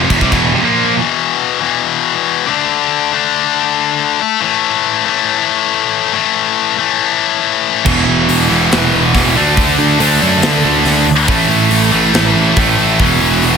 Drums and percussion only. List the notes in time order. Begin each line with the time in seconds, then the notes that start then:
0.10 kick, crash
0.21 kick
0.32 kick, crash
7.86 kick, crash
8.29 open hi-hat
8.72 snare, open hi-hat
9.15 kick, snare, open hi-hat
9.57 kick, open hi-hat
10.00 open hi-hat
10.42 snare, open hi-hat
10.85 snare, open hi-hat
11.28 kick, open hi-hat
11.71 open hi-hat
12.14 snare, open hi-hat
12.56 kick, open hi-hat
13.00 kick, open hi-hat
13.42 open hi-hat